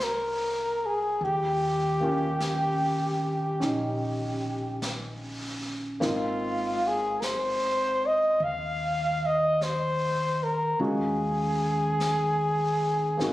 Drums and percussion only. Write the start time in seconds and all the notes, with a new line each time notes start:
0.00 brush sweep, snare, hi-hat pedal
1.21 brush sweep
2.40 brush sweep, snare, hi-hat pedal
3.61 brush sweep, snare
4.82 brush sweep, snare, hi-hat pedal
6.02 brush sweep, snare
7.22 brush sweep, snare, hi-hat pedal
8.41 brush sweep
9.61 brush sweep, snare, hi-hat pedal
10.80 brush sweep
12.00 brush sweep, snare, hi-hat pedal
13.20 brush sweep, snare